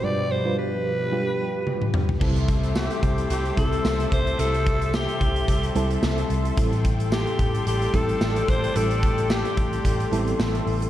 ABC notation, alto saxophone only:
X:1
M:4/4
L:1/8
Q:"Swing 16ths" 1/4=110
K:C
V:1 name="Alto saxophone"
d c B4- B z | z2 G2 G A2 c | A2 G4 z2 | z2 G2 G A2 c |
A2 G4 z2 |]